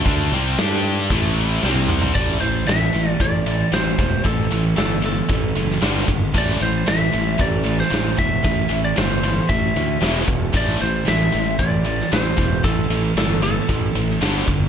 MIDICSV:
0, 0, Header, 1, 5, 480
1, 0, Start_track
1, 0, Key_signature, 0, "minor"
1, 0, Tempo, 524476
1, 51, Time_signature, 4, 2, 24, 8
1, 13442, End_track
2, 0, Start_track
2, 0, Title_t, "Lead electric guitar"
2, 0, Program_c, 0, 29
2, 1969, Note_on_c, 0, 74, 99
2, 2198, Note_off_c, 0, 74, 0
2, 2202, Note_on_c, 0, 72, 78
2, 2447, Note_on_c, 0, 76, 90
2, 2452, Note_off_c, 0, 72, 0
2, 2840, Note_off_c, 0, 76, 0
2, 2840, Note_on_c, 0, 74, 90
2, 2938, Note_off_c, 0, 74, 0
2, 2938, Note_on_c, 0, 74, 89
2, 3416, Note_off_c, 0, 74, 0
2, 3420, Note_on_c, 0, 72, 82
2, 3898, Note_on_c, 0, 69, 87
2, 3908, Note_off_c, 0, 72, 0
2, 4357, Note_off_c, 0, 69, 0
2, 4368, Note_on_c, 0, 69, 79
2, 4591, Note_off_c, 0, 69, 0
2, 4628, Note_on_c, 0, 69, 76
2, 5302, Note_off_c, 0, 69, 0
2, 5839, Note_on_c, 0, 74, 89
2, 6060, Note_off_c, 0, 74, 0
2, 6063, Note_on_c, 0, 72, 81
2, 6298, Note_on_c, 0, 76, 88
2, 6303, Note_off_c, 0, 72, 0
2, 6780, Note_on_c, 0, 74, 83
2, 6788, Note_off_c, 0, 76, 0
2, 7110, Note_off_c, 0, 74, 0
2, 7137, Note_on_c, 0, 72, 81
2, 7468, Note_off_c, 0, 72, 0
2, 7492, Note_on_c, 0, 76, 94
2, 8053, Note_off_c, 0, 76, 0
2, 8095, Note_on_c, 0, 74, 81
2, 8214, Note_off_c, 0, 74, 0
2, 8214, Note_on_c, 0, 72, 85
2, 8684, Note_on_c, 0, 76, 82
2, 8706, Note_off_c, 0, 72, 0
2, 9370, Note_off_c, 0, 76, 0
2, 9670, Note_on_c, 0, 74, 92
2, 9893, Note_off_c, 0, 74, 0
2, 9897, Note_on_c, 0, 72, 80
2, 10140, Note_off_c, 0, 72, 0
2, 10146, Note_on_c, 0, 76, 88
2, 10584, Note_off_c, 0, 76, 0
2, 10606, Note_on_c, 0, 74, 87
2, 11096, Note_off_c, 0, 74, 0
2, 11099, Note_on_c, 0, 72, 72
2, 11572, Note_on_c, 0, 69, 83
2, 11588, Note_off_c, 0, 72, 0
2, 12016, Note_off_c, 0, 69, 0
2, 12060, Note_on_c, 0, 69, 79
2, 12281, Note_off_c, 0, 69, 0
2, 12292, Note_on_c, 0, 69, 76
2, 12973, Note_off_c, 0, 69, 0
2, 13442, End_track
3, 0, Start_track
3, 0, Title_t, "Distorted electric guitar"
3, 0, Program_c, 1, 30
3, 67, Note_on_c, 1, 50, 81
3, 68, Note_on_c, 1, 57, 93
3, 76, Note_on_c, 1, 62, 105
3, 291, Note_off_c, 1, 50, 0
3, 292, Note_off_c, 1, 57, 0
3, 296, Note_off_c, 1, 62, 0
3, 307, Note_on_c, 1, 48, 99
3, 312, Note_on_c, 1, 55, 99
3, 316, Note_on_c, 1, 60, 117
3, 531, Note_off_c, 1, 48, 0
3, 532, Note_off_c, 1, 55, 0
3, 536, Note_off_c, 1, 60, 0
3, 543, Note_on_c, 1, 55, 77
3, 548, Note_on_c, 1, 62, 80
3, 558, Note_on_c, 1, 67, 91
3, 1008, Note_off_c, 1, 55, 0
3, 1011, Note_off_c, 1, 62, 0
3, 1014, Note_on_c, 1, 45, 80
3, 1016, Note_off_c, 1, 67, 0
3, 1023, Note_on_c, 1, 52, 85
3, 1026, Note_on_c, 1, 57, 95
3, 1484, Note_off_c, 1, 45, 0
3, 1488, Note_off_c, 1, 52, 0
3, 1490, Note_off_c, 1, 57, 0
3, 1497, Note_on_c, 1, 48, 82
3, 1500, Note_on_c, 1, 55, 92
3, 1503, Note_on_c, 1, 60, 91
3, 1958, Note_off_c, 1, 48, 0
3, 1962, Note_on_c, 1, 45, 78
3, 1967, Note_off_c, 1, 55, 0
3, 1968, Note_off_c, 1, 60, 0
3, 1971, Note_on_c, 1, 52, 81
3, 1980, Note_on_c, 1, 57, 89
3, 2190, Note_off_c, 1, 45, 0
3, 2195, Note_off_c, 1, 52, 0
3, 2199, Note_off_c, 1, 57, 0
3, 2214, Note_on_c, 1, 45, 78
3, 2218, Note_on_c, 1, 52, 76
3, 2427, Note_off_c, 1, 45, 0
3, 2429, Note_off_c, 1, 52, 0
3, 2440, Note_on_c, 1, 45, 68
3, 2443, Note_on_c, 1, 52, 67
3, 2660, Note_off_c, 1, 45, 0
3, 2661, Note_off_c, 1, 52, 0
3, 2681, Note_on_c, 1, 45, 78
3, 2687, Note_on_c, 1, 52, 80
3, 2900, Note_off_c, 1, 45, 0
3, 2903, Note_off_c, 1, 52, 0
3, 2928, Note_on_c, 1, 52, 68
3, 2934, Note_on_c, 1, 45, 67
3, 3144, Note_off_c, 1, 52, 0
3, 3147, Note_off_c, 1, 45, 0
3, 3171, Note_on_c, 1, 45, 56
3, 3174, Note_on_c, 1, 52, 67
3, 3386, Note_off_c, 1, 45, 0
3, 3387, Note_off_c, 1, 52, 0
3, 3404, Note_on_c, 1, 45, 54
3, 3409, Note_on_c, 1, 52, 73
3, 3622, Note_off_c, 1, 45, 0
3, 3624, Note_off_c, 1, 52, 0
3, 3646, Note_on_c, 1, 45, 65
3, 3651, Note_on_c, 1, 52, 82
3, 3863, Note_off_c, 1, 45, 0
3, 3865, Note_off_c, 1, 52, 0
3, 3880, Note_on_c, 1, 45, 56
3, 3882, Note_on_c, 1, 52, 66
3, 4100, Note_off_c, 1, 45, 0
3, 4101, Note_off_c, 1, 52, 0
3, 4125, Note_on_c, 1, 45, 70
3, 4133, Note_on_c, 1, 52, 77
3, 4343, Note_off_c, 1, 45, 0
3, 4346, Note_off_c, 1, 52, 0
3, 4359, Note_on_c, 1, 45, 69
3, 4362, Note_on_c, 1, 52, 72
3, 4579, Note_off_c, 1, 45, 0
3, 4581, Note_off_c, 1, 52, 0
3, 4594, Note_on_c, 1, 45, 72
3, 4599, Note_on_c, 1, 52, 80
3, 4817, Note_off_c, 1, 45, 0
3, 4819, Note_off_c, 1, 52, 0
3, 4839, Note_on_c, 1, 45, 64
3, 4843, Note_on_c, 1, 52, 85
3, 5060, Note_off_c, 1, 45, 0
3, 5061, Note_off_c, 1, 52, 0
3, 5094, Note_on_c, 1, 45, 51
3, 5094, Note_on_c, 1, 52, 61
3, 5307, Note_off_c, 1, 45, 0
3, 5307, Note_off_c, 1, 52, 0
3, 5325, Note_on_c, 1, 43, 76
3, 5327, Note_on_c, 1, 50, 89
3, 5339, Note_on_c, 1, 55, 79
3, 5547, Note_off_c, 1, 50, 0
3, 5549, Note_off_c, 1, 43, 0
3, 5558, Note_on_c, 1, 50, 73
3, 5559, Note_off_c, 1, 55, 0
3, 5560, Note_on_c, 1, 43, 73
3, 5779, Note_off_c, 1, 50, 0
3, 5780, Note_off_c, 1, 43, 0
3, 5804, Note_on_c, 1, 45, 73
3, 5811, Note_on_c, 1, 52, 74
3, 5813, Note_on_c, 1, 57, 87
3, 6029, Note_off_c, 1, 45, 0
3, 6033, Note_off_c, 1, 52, 0
3, 6036, Note_off_c, 1, 57, 0
3, 6040, Note_on_c, 1, 45, 85
3, 6044, Note_on_c, 1, 52, 90
3, 6260, Note_off_c, 1, 45, 0
3, 6262, Note_off_c, 1, 52, 0
3, 6282, Note_on_c, 1, 45, 67
3, 6285, Note_on_c, 1, 52, 74
3, 6501, Note_off_c, 1, 45, 0
3, 6503, Note_off_c, 1, 52, 0
3, 6523, Note_on_c, 1, 52, 81
3, 6527, Note_on_c, 1, 45, 59
3, 6742, Note_off_c, 1, 52, 0
3, 6744, Note_off_c, 1, 45, 0
3, 6755, Note_on_c, 1, 45, 67
3, 6767, Note_on_c, 1, 52, 76
3, 6977, Note_off_c, 1, 45, 0
3, 6980, Note_off_c, 1, 52, 0
3, 6991, Note_on_c, 1, 52, 65
3, 6992, Note_on_c, 1, 45, 56
3, 7216, Note_off_c, 1, 45, 0
3, 7216, Note_off_c, 1, 52, 0
3, 7231, Note_on_c, 1, 45, 70
3, 7237, Note_on_c, 1, 52, 73
3, 7456, Note_off_c, 1, 45, 0
3, 7459, Note_off_c, 1, 52, 0
3, 7482, Note_on_c, 1, 45, 70
3, 7488, Note_on_c, 1, 52, 71
3, 7701, Note_off_c, 1, 45, 0
3, 7704, Note_off_c, 1, 52, 0
3, 7723, Note_on_c, 1, 45, 60
3, 7727, Note_on_c, 1, 52, 67
3, 7942, Note_off_c, 1, 45, 0
3, 7944, Note_off_c, 1, 52, 0
3, 7952, Note_on_c, 1, 45, 74
3, 7966, Note_on_c, 1, 52, 77
3, 8176, Note_off_c, 1, 45, 0
3, 8183, Note_off_c, 1, 52, 0
3, 8201, Note_on_c, 1, 45, 67
3, 8207, Note_on_c, 1, 52, 69
3, 8421, Note_off_c, 1, 45, 0
3, 8424, Note_off_c, 1, 52, 0
3, 8453, Note_on_c, 1, 45, 69
3, 8458, Note_on_c, 1, 52, 86
3, 8667, Note_off_c, 1, 45, 0
3, 8669, Note_off_c, 1, 52, 0
3, 8692, Note_on_c, 1, 45, 62
3, 8699, Note_on_c, 1, 52, 69
3, 8906, Note_off_c, 1, 45, 0
3, 8910, Note_off_c, 1, 52, 0
3, 8933, Note_on_c, 1, 45, 66
3, 8939, Note_on_c, 1, 52, 60
3, 9147, Note_off_c, 1, 45, 0
3, 9150, Note_off_c, 1, 52, 0
3, 9157, Note_on_c, 1, 40, 68
3, 9167, Note_on_c, 1, 47, 91
3, 9174, Note_on_c, 1, 52, 91
3, 9389, Note_off_c, 1, 40, 0
3, 9393, Note_off_c, 1, 47, 0
3, 9397, Note_off_c, 1, 52, 0
3, 9400, Note_on_c, 1, 40, 63
3, 9407, Note_on_c, 1, 47, 65
3, 9620, Note_off_c, 1, 40, 0
3, 9624, Note_off_c, 1, 47, 0
3, 9642, Note_on_c, 1, 52, 84
3, 9645, Note_on_c, 1, 45, 79
3, 9655, Note_on_c, 1, 57, 89
3, 9871, Note_off_c, 1, 52, 0
3, 9873, Note_off_c, 1, 45, 0
3, 9877, Note_off_c, 1, 57, 0
3, 9886, Note_on_c, 1, 45, 75
3, 9888, Note_on_c, 1, 52, 89
3, 10103, Note_off_c, 1, 45, 0
3, 10104, Note_off_c, 1, 52, 0
3, 10114, Note_on_c, 1, 45, 65
3, 10123, Note_on_c, 1, 52, 74
3, 10337, Note_off_c, 1, 45, 0
3, 10342, Note_off_c, 1, 52, 0
3, 10363, Note_on_c, 1, 45, 73
3, 10364, Note_on_c, 1, 52, 78
3, 10582, Note_off_c, 1, 45, 0
3, 10582, Note_off_c, 1, 52, 0
3, 10606, Note_on_c, 1, 45, 62
3, 10610, Note_on_c, 1, 52, 69
3, 10823, Note_off_c, 1, 45, 0
3, 10825, Note_off_c, 1, 52, 0
3, 10841, Note_on_c, 1, 45, 60
3, 10845, Note_on_c, 1, 52, 65
3, 11060, Note_off_c, 1, 45, 0
3, 11062, Note_off_c, 1, 52, 0
3, 11091, Note_on_c, 1, 45, 62
3, 11096, Note_on_c, 1, 52, 66
3, 11305, Note_off_c, 1, 45, 0
3, 11308, Note_off_c, 1, 52, 0
3, 11320, Note_on_c, 1, 45, 57
3, 11326, Note_on_c, 1, 52, 74
3, 11540, Note_off_c, 1, 45, 0
3, 11543, Note_off_c, 1, 52, 0
3, 11566, Note_on_c, 1, 45, 67
3, 11572, Note_on_c, 1, 52, 77
3, 11783, Note_off_c, 1, 45, 0
3, 11786, Note_off_c, 1, 52, 0
3, 11809, Note_on_c, 1, 45, 76
3, 11812, Note_on_c, 1, 52, 84
3, 12024, Note_off_c, 1, 45, 0
3, 12026, Note_off_c, 1, 52, 0
3, 12053, Note_on_c, 1, 45, 69
3, 12058, Note_on_c, 1, 52, 77
3, 12266, Note_off_c, 1, 45, 0
3, 12269, Note_off_c, 1, 52, 0
3, 12285, Note_on_c, 1, 45, 74
3, 12285, Note_on_c, 1, 52, 76
3, 12502, Note_off_c, 1, 45, 0
3, 12502, Note_off_c, 1, 52, 0
3, 12527, Note_on_c, 1, 45, 66
3, 12529, Note_on_c, 1, 52, 78
3, 12743, Note_off_c, 1, 45, 0
3, 12744, Note_off_c, 1, 52, 0
3, 12772, Note_on_c, 1, 45, 59
3, 12778, Note_on_c, 1, 52, 73
3, 12985, Note_off_c, 1, 45, 0
3, 12989, Note_off_c, 1, 52, 0
3, 13008, Note_on_c, 1, 43, 85
3, 13012, Note_on_c, 1, 50, 90
3, 13016, Note_on_c, 1, 55, 94
3, 13233, Note_off_c, 1, 43, 0
3, 13235, Note_off_c, 1, 50, 0
3, 13237, Note_off_c, 1, 55, 0
3, 13243, Note_on_c, 1, 43, 61
3, 13248, Note_on_c, 1, 50, 73
3, 13442, Note_off_c, 1, 43, 0
3, 13442, Note_off_c, 1, 50, 0
3, 13442, End_track
4, 0, Start_track
4, 0, Title_t, "Fingered electric bass"
4, 0, Program_c, 2, 33
4, 56, Note_on_c, 2, 38, 92
4, 276, Note_off_c, 2, 38, 0
4, 293, Note_on_c, 2, 36, 101
4, 514, Note_off_c, 2, 36, 0
4, 537, Note_on_c, 2, 43, 91
4, 979, Note_off_c, 2, 43, 0
4, 1016, Note_on_c, 2, 33, 92
4, 1459, Note_off_c, 2, 33, 0
4, 1496, Note_on_c, 2, 36, 79
4, 1938, Note_off_c, 2, 36, 0
4, 1971, Note_on_c, 2, 33, 92
4, 2163, Note_off_c, 2, 33, 0
4, 2219, Note_on_c, 2, 33, 76
4, 2408, Note_off_c, 2, 33, 0
4, 2453, Note_on_c, 2, 33, 88
4, 2644, Note_off_c, 2, 33, 0
4, 2696, Note_on_c, 2, 33, 89
4, 2886, Note_off_c, 2, 33, 0
4, 2935, Note_on_c, 2, 33, 81
4, 3319, Note_off_c, 2, 33, 0
4, 3412, Note_on_c, 2, 33, 76
4, 3604, Note_off_c, 2, 33, 0
4, 3651, Note_on_c, 2, 28, 83
4, 3843, Note_off_c, 2, 28, 0
4, 3891, Note_on_c, 2, 33, 85
4, 4083, Note_off_c, 2, 33, 0
4, 4137, Note_on_c, 2, 33, 76
4, 4327, Note_off_c, 2, 33, 0
4, 4374, Note_on_c, 2, 31, 94
4, 4758, Note_off_c, 2, 31, 0
4, 4848, Note_on_c, 2, 33, 84
4, 5041, Note_off_c, 2, 33, 0
4, 5093, Note_on_c, 2, 30, 85
4, 5284, Note_off_c, 2, 30, 0
4, 5325, Note_on_c, 2, 31, 86
4, 5520, Note_off_c, 2, 31, 0
4, 5567, Note_on_c, 2, 32, 96
4, 5761, Note_off_c, 2, 32, 0
4, 5810, Note_on_c, 2, 33, 97
4, 6003, Note_off_c, 2, 33, 0
4, 6054, Note_on_c, 2, 33, 92
4, 6245, Note_off_c, 2, 33, 0
4, 6294, Note_on_c, 2, 33, 87
4, 6485, Note_off_c, 2, 33, 0
4, 6538, Note_on_c, 2, 33, 92
4, 6728, Note_off_c, 2, 33, 0
4, 6772, Note_on_c, 2, 33, 83
4, 7158, Note_off_c, 2, 33, 0
4, 7249, Note_on_c, 2, 33, 82
4, 7442, Note_off_c, 2, 33, 0
4, 7497, Note_on_c, 2, 28, 79
4, 7687, Note_off_c, 2, 28, 0
4, 7733, Note_on_c, 2, 33, 94
4, 7925, Note_off_c, 2, 33, 0
4, 7966, Note_on_c, 2, 33, 79
4, 8161, Note_off_c, 2, 33, 0
4, 8215, Note_on_c, 2, 31, 84
4, 8599, Note_off_c, 2, 31, 0
4, 8690, Note_on_c, 2, 33, 80
4, 8883, Note_off_c, 2, 33, 0
4, 8931, Note_on_c, 2, 38, 76
4, 9123, Note_off_c, 2, 38, 0
4, 9167, Note_on_c, 2, 28, 84
4, 9361, Note_off_c, 2, 28, 0
4, 9408, Note_on_c, 2, 28, 78
4, 9601, Note_off_c, 2, 28, 0
4, 9647, Note_on_c, 2, 33, 83
4, 9841, Note_off_c, 2, 33, 0
4, 9901, Note_on_c, 2, 33, 84
4, 10089, Note_off_c, 2, 33, 0
4, 10137, Note_on_c, 2, 33, 90
4, 10327, Note_off_c, 2, 33, 0
4, 10385, Note_on_c, 2, 33, 94
4, 10572, Note_off_c, 2, 33, 0
4, 10613, Note_on_c, 2, 33, 94
4, 10998, Note_off_c, 2, 33, 0
4, 11098, Note_on_c, 2, 33, 90
4, 11287, Note_off_c, 2, 33, 0
4, 11333, Note_on_c, 2, 28, 82
4, 11524, Note_off_c, 2, 28, 0
4, 11572, Note_on_c, 2, 33, 90
4, 11763, Note_off_c, 2, 33, 0
4, 11807, Note_on_c, 2, 33, 80
4, 12000, Note_off_c, 2, 33, 0
4, 12042, Note_on_c, 2, 31, 88
4, 12431, Note_off_c, 2, 31, 0
4, 12536, Note_on_c, 2, 33, 88
4, 12726, Note_off_c, 2, 33, 0
4, 12769, Note_on_c, 2, 33, 77
4, 12962, Note_off_c, 2, 33, 0
4, 13008, Note_on_c, 2, 31, 90
4, 13201, Note_off_c, 2, 31, 0
4, 13252, Note_on_c, 2, 31, 86
4, 13442, Note_off_c, 2, 31, 0
4, 13442, End_track
5, 0, Start_track
5, 0, Title_t, "Drums"
5, 47, Note_on_c, 9, 46, 75
5, 53, Note_on_c, 9, 36, 91
5, 138, Note_off_c, 9, 46, 0
5, 144, Note_off_c, 9, 36, 0
5, 288, Note_on_c, 9, 46, 64
5, 380, Note_off_c, 9, 46, 0
5, 528, Note_on_c, 9, 46, 78
5, 537, Note_on_c, 9, 38, 107
5, 619, Note_off_c, 9, 46, 0
5, 628, Note_off_c, 9, 38, 0
5, 770, Note_on_c, 9, 46, 62
5, 861, Note_off_c, 9, 46, 0
5, 1006, Note_on_c, 9, 46, 74
5, 1010, Note_on_c, 9, 36, 94
5, 1098, Note_off_c, 9, 46, 0
5, 1102, Note_off_c, 9, 36, 0
5, 1250, Note_on_c, 9, 46, 60
5, 1341, Note_off_c, 9, 46, 0
5, 1493, Note_on_c, 9, 38, 57
5, 1584, Note_off_c, 9, 38, 0
5, 1604, Note_on_c, 9, 48, 64
5, 1695, Note_off_c, 9, 48, 0
5, 1725, Note_on_c, 9, 45, 93
5, 1817, Note_off_c, 9, 45, 0
5, 1845, Note_on_c, 9, 43, 88
5, 1937, Note_off_c, 9, 43, 0
5, 1966, Note_on_c, 9, 49, 98
5, 1971, Note_on_c, 9, 36, 88
5, 2057, Note_off_c, 9, 49, 0
5, 2063, Note_off_c, 9, 36, 0
5, 2102, Note_on_c, 9, 38, 32
5, 2194, Note_off_c, 9, 38, 0
5, 2220, Note_on_c, 9, 51, 75
5, 2312, Note_off_c, 9, 51, 0
5, 2454, Note_on_c, 9, 51, 91
5, 2464, Note_on_c, 9, 38, 118
5, 2546, Note_off_c, 9, 51, 0
5, 2555, Note_off_c, 9, 38, 0
5, 2695, Note_on_c, 9, 51, 76
5, 2786, Note_off_c, 9, 51, 0
5, 2927, Note_on_c, 9, 51, 81
5, 2930, Note_on_c, 9, 36, 99
5, 3018, Note_off_c, 9, 51, 0
5, 3021, Note_off_c, 9, 36, 0
5, 3167, Note_on_c, 9, 51, 70
5, 3258, Note_off_c, 9, 51, 0
5, 3410, Note_on_c, 9, 51, 80
5, 3419, Note_on_c, 9, 38, 94
5, 3502, Note_off_c, 9, 51, 0
5, 3511, Note_off_c, 9, 38, 0
5, 3649, Note_on_c, 9, 36, 86
5, 3649, Note_on_c, 9, 51, 83
5, 3740, Note_off_c, 9, 51, 0
5, 3741, Note_off_c, 9, 36, 0
5, 3886, Note_on_c, 9, 51, 95
5, 3889, Note_on_c, 9, 36, 105
5, 3978, Note_off_c, 9, 51, 0
5, 3980, Note_off_c, 9, 36, 0
5, 4132, Note_on_c, 9, 51, 70
5, 4223, Note_off_c, 9, 51, 0
5, 4368, Note_on_c, 9, 51, 97
5, 4377, Note_on_c, 9, 38, 112
5, 4459, Note_off_c, 9, 51, 0
5, 4468, Note_off_c, 9, 38, 0
5, 4608, Note_on_c, 9, 51, 64
5, 4699, Note_off_c, 9, 51, 0
5, 4845, Note_on_c, 9, 51, 80
5, 4846, Note_on_c, 9, 36, 98
5, 4936, Note_off_c, 9, 51, 0
5, 4938, Note_off_c, 9, 36, 0
5, 5084, Note_on_c, 9, 51, 66
5, 5175, Note_off_c, 9, 51, 0
5, 5219, Note_on_c, 9, 38, 27
5, 5310, Note_off_c, 9, 38, 0
5, 5323, Note_on_c, 9, 51, 79
5, 5332, Note_on_c, 9, 38, 109
5, 5414, Note_off_c, 9, 51, 0
5, 5423, Note_off_c, 9, 38, 0
5, 5566, Note_on_c, 9, 36, 75
5, 5567, Note_on_c, 9, 51, 68
5, 5657, Note_off_c, 9, 36, 0
5, 5659, Note_off_c, 9, 51, 0
5, 5806, Note_on_c, 9, 51, 80
5, 5807, Note_on_c, 9, 36, 101
5, 5897, Note_off_c, 9, 51, 0
5, 5899, Note_off_c, 9, 36, 0
5, 5943, Note_on_c, 9, 38, 34
5, 6035, Note_off_c, 9, 38, 0
5, 6049, Note_on_c, 9, 51, 67
5, 6141, Note_off_c, 9, 51, 0
5, 6286, Note_on_c, 9, 51, 82
5, 6295, Note_on_c, 9, 38, 116
5, 6377, Note_off_c, 9, 51, 0
5, 6386, Note_off_c, 9, 38, 0
5, 6528, Note_on_c, 9, 51, 74
5, 6619, Note_off_c, 9, 51, 0
5, 6768, Note_on_c, 9, 36, 101
5, 6769, Note_on_c, 9, 51, 86
5, 6859, Note_off_c, 9, 36, 0
5, 6861, Note_off_c, 9, 51, 0
5, 7012, Note_on_c, 9, 51, 70
5, 7103, Note_off_c, 9, 51, 0
5, 7145, Note_on_c, 9, 38, 31
5, 7237, Note_off_c, 9, 38, 0
5, 7257, Note_on_c, 9, 51, 79
5, 7266, Note_on_c, 9, 38, 102
5, 7349, Note_off_c, 9, 51, 0
5, 7358, Note_off_c, 9, 38, 0
5, 7491, Note_on_c, 9, 36, 84
5, 7496, Note_on_c, 9, 51, 78
5, 7583, Note_off_c, 9, 36, 0
5, 7588, Note_off_c, 9, 51, 0
5, 7729, Note_on_c, 9, 36, 92
5, 7732, Note_on_c, 9, 51, 92
5, 7821, Note_off_c, 9, 36, 0
5, 7823, Note_off_c, 9, 51, 0
5, 7972, Note_on_c, 9, 51, 70
5, 8064, Note_off_c, 9, 51, 0
5, 8209, Note_on_c, 9, 51, 96
5, 8218, Note_on_c, 9, 38, 113
5, 8301, Note_off_c, 9, 51, 0
5, 8310, Note_off_c, 9, 38, 0
5, 8449, Note_on_c, 9, 51, 72
5, 8541, Note_off_c, 9, 51, 0
5, 8690, Note_on_c, 9, 36, 98
5, 8690, Note_on_c, 9, 51, 84
5, 8781, Note_off_c, 9, 36, 0
5, 8782, Note_off_c, 9, 51, 0
5, 8934, Note_on_c, 9, 51, 62
5, 9025, Note_off_c, 9, 51, 0
5, 9167, Note_on_c, 9, 51, 75
5, 9176, Note_on_c, 9, 38, 100
5, 9258, Note_off_c, 9, 51, 0
5, 9267, Note_off_c, 9, 38, 0
5, 9407, Note_on_c, 9, 51, 69
5, 9408, Note_on_c, 9, 36, 82
5, 9498, Note_off_c, 9, 51, 0
5, 9499, Note_off_c, 9, 36, 0
5, 9644, Note_on_c, 9, 51, 81
5, 9646, Note_on_c, 9, 36, 101
5, 9735, Note_off_c, 9, 51, 0
5, 9738, Note_off_c, 9, 36, 0
5, 9773, Note_on_c, 9, 38, 36
5, 9865, Note_off_c, 9, 38, 0
5, 9887, Note_on_c, 9, 51, 63
5, 9979, Note_off_c, 9, 51, 0
5, 10130, Note_on_c, 9, 51, 90
5, 10139, Note_on_c, 9, 38, 103
5, 10221, Note_off_c, 9, 51, 0
5, 10231, Note_off_c, 9, 38, 0
5, 10372, Note_on_c, 9, 51, 67
5, 10464, Note_off_c, 9, 51, 0
5, 10608, Note_on_c, 9, 36, 101
5, 10609, Note_on_c, 9, 51, 82
5, 10700, Note_off_c, 9, 36, 0
5, 10701, Note_off_c, 9, 51, 0
5, 10852, Note_on_c, 9, 51, 60
5, 10944, Note_off_c, 9, 51, 0
5, 10986, Note_on_c, 9, 38, 27
5, 11077, Note_off_c, 9, 38, 0
5, 11092, Note_on_c, 9, 51, 75
5, 11101, Note_on_c, 9, 38, 107
5, 11184, Note_off_c, 9, 51, 0
5, 11193, Note_off_c, 9, 38, 0
5, 11330, Note_on_c, 9, 36, 81
5, 11332, Note_on_c, 9, 51, 67
5, 11421, Note_off_c, 9, 36, 0
5, 11423, Note_off_c, 9, 51, 0
5, 11569, Note_on_c, 9, 36, 101
5, 11572, Note_on_c, 9, 51, 90
5, 11661, Note_off_c, 9, 36, 0
5, 11663, Note_off_c, 9, 51, 0
5, 11808, Note_on_c, 9, 51, 81
5, 11900, Note_off_c, 9, 51, 0
5, 12051, Note_on_c, 9, 51, 94
5, 12060, Note_on_c, 9, 38, 106
5, 12142, Note_off_c, 9, 51, 0
5, 12152, Note_off_c, 9, 38, 0
5, 12289, Note_on_c, 9, 51, 73
5, 12380, Note_off_c, 9, 51, 0
5, 12530, Note_on_c, 9, 36, 107
5, 12534, Note_on_c, 9, 51, 91
5, 12622, Note_off_c, 9, 36, 0
5, 12625, Note_off_c, 9, 51, 0
5, 12768, Note_on_c, 9, 51, 66
5, 12860, Note_off_c, 9, 51, 0
5, 12902, Note_on_c, 9, 38, 25
5, 12993, Note_off_c, 9, 38, 0
5, 13011, Note_on_c, 9, 51, 85
5, 13020, Note_on_c, 9, 38, 102
5, 13103, Note_off_c, 9, 51, 0
5, 13112, Note_off_c, 9, 38, 0
5, 13249, Note_on_c, 9, 51, 73
5, 13250, Note_on_c, 9, 36, 81
5, 13340, Note_off_c, 9, 51, 0
5, 13342, Note_off_c, 9, 36, 0
5, 13442, End_track
0, 0, End_of_file